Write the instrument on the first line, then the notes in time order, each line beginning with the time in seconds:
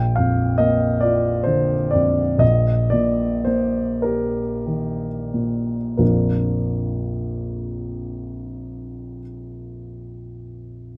grand piano
Already playing: A#1 G5
0.16 F2 F5
0.58 A#3 D#5
1.01 F4 D5
1.44 D3 C5
1.91 F2 D5
2.38 A#1 D#5
2.90 A#2 D5
3.45 A#3 C5
4.02 G4 A#4
4.66 D#3
5.34 A#2
5.97 A#1 F2 F3 A#3 D4 F4 A#4